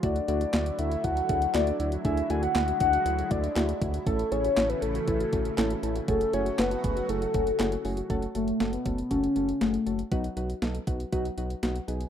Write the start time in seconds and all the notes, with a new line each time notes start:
0.03 D2 D3 F#3 A3 D4 E4 F#4 D5, kick, closed hi-hat
0.16 closed hi-hat
0.28 D2 A3 D4 E4 F#4, closed hi-hat
0.41 F#4, closed hi-hat
0.53 D2 A3 D4 E4 F#4, snare, clap, closed hi-hat
0.66 F#4, closed hi-hat
0.79 D2 A3 D4 E4 F#4 E5, closed hi-hat
0.91 F#4, closed hi-hat
1.04 D2 A3 D4 E4 F#4 F#5, kick, closed hi-hat
1.17 F#4, closed hi-hat
1.29 D2 A3 D4 E4 F#4 G#4, kick, closed hi-hat
1.42 closed hi-hat
1.54 D2 A3 D4 E4 F#4 D5, snare, clap, closed hi-hat
1.67 F#4, closed hi-hat
1.80 D2 A3 D4 E4 F#4, closed hi-hat
1.92 F#4, closed hi-hat
2.05 D2 G#3 A3 D4 E4 G#4 E5, kick, closed hi-hat
2.17 closed hi-hat
2.30 D2 A3 D4 E4 F#4 G#5, closed hi-hat
2.43 F#4 F#5, closed hi-hat
2.55 D2 A3 D4 E4 F#4, snare, clap, closed hi-hat
2.68 F#4, closed hi-hat
2.80 D2 A3 D4 E4 F#4 F#5, kick, closed hi-hat
2.93 F#4, closed hi-hat
3.06 D2 A3 D4 E4 F#4, closed hi-hat
3.18 F#4, closed hi-hat
3.31 D2 A3 D4 E4 F#4 D5, kick, closed hi-hat
3.44 closed hi-hat
3.56 D2 A3 D4 E4 F#4, snare, clap, closed hi-hat
3.69 F#4, closed hi-hat
3.81 D2 A3 D4 E4 F#4, kick, closed hi-hat
3.94 F#4, closed hi-hat
4.06 A1 C#3 E3 A3 C#4 E4 A4, kick, closed hi-hat
4.19 closed hi-hat
4.32 A1 A3 C#4 E4 G#4 C#5, closed hi-hat
4.44 F#4, closed hi-hat
4.57 A1 A3 C#4 E4 A4, snare, clap, closed hi-hat
4.69 F#4 B4, closed hi-hat
4.82 A1 A3 C#4 E4 A4, closed hi-hat
4.95 F#4, closed hi-hat
5.07 A1 A3 C#4 E4 B4, kick, closed hi-hat
5.20 F#4, closed hi-hat
5.33 A1 A3 C#4 E4 F#4 A4, kick, closed hi-hat
5.45 closed hi-hat
5.58 A1 A3 C#4 E4 A4, snare, clap, closed hi-hat
5.70 F#4, closed hi-hat
5.83 A1 A3 C#4 E4 A4, closed hi-hat
5.96 F#4, closed hi-hat
6.08 F#1 F#3 A3 C#4 F#4 G#4 A4, kick, closed hi-hat
6.21 closed hi-hat
6.33 F#1 A3 C#4 E4 F#4 G#4 C#5, closed hi-hat
6.46 F#4, closed hi-hat
6.59 F#1 A3 C#4 E4 F#4 A4 B4, snare, clap, closed hi-hat
6.71 F#4, closed hi-hat
6.84 F#1 A3 C#4 F#4 G#4, kick, closed hi-hat
6.96 F#4, closed hi-hat
7.09 F#1 A3 C#4 E4 F#4 G#4 A4, closed hi-hat
7.22 F#4, closed hi-hat
7.34 F#1 A3 C#4 F#4 G#4, kick, closed hi-hat
7.47 closed hi-hat
7.59 F#1 A3 C#4 E4 F#4 G#4, snare, clap, closed hi-hat
7.72 F#4, closed hi-hat
7.85 F#1 A3 C#4 E4 F#4 G#4, open hi-hat
7.97 F#4, closed hi-hat
8.10 F#1 A3 C#4 F#4 A4, kick, closed hi-hat
8.22 closed hi-hat
8.35 F#1 A3 C#4 F#4 A4, closed hi-hat
8.48 closed hi-hat
8.60 F#1 A3 C#4 F#4 A4, snare, closed hi-hat
8.73 B3, closed hi-hat
8.86 F#1 A3 C#4 F#4 A4, kick, closed hi-hat
8.98 closed hi-hat
9.10 F#1 A3 C#4 F#4 A4, kick, closed hi-hat
9.23 C#4, closed hi-hat
9.36 F#1 A3 C#4 F#4 A4, closed hi-hat
9.49 closed hi-hat
9.61 F#1 A3 C#4 F#4 G#4, snare, closed hi-hat
9.74 closed hi-hat
9.86 F#1 A3 C#4 F#4 A4, closed hi-hat
9.99 closed hi-hat
10.12 B1 F#3 B3 D#4 F#4, kick, closed hi-hat
10.24 closed hi-hat
10.37 B1 F#3 B3 D#4 F#4, closed hi-hat
10.50 closed hi-hat
10.62 B1 F#3 B3 D#4 A4, snare, closed hi-hat
10.75 closed hi-hat
10.87 B1 F#3 B3 D#4 F#4, kick, closed hi-hat
11.00 closed hi-hat
11.12 B1 F#3 B3 D#4 F#4, kick, closed hi-hat
11.25 closed hi-hat
11.38 B1 F#3 B3 D#4 F#4, closed hi-hat
11.50 closed hi-hat
11.63 B1 F#3 B3 D#4 F#4, snare, closed hi-hat
11.76 closed hi-hat
11.88 B1 F#3 B3 D#4 G#4, closed hi-hat
12.01 closed hi-hat